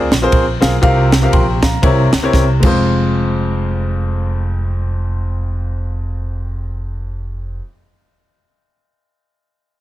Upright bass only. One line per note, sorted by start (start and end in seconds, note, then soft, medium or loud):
0.11 0.29 A#1 medium
0.32 0.58 A#1 medium
0.61 0.79 B1 medium
0.82 1.25 C2 loud
1.33 1.76 A#1 loud
1.83 2.08 C2 loud
2.13 2.30 C#2 medium
2.33 2.59 C2 medium
2.63 7.58 F1 medium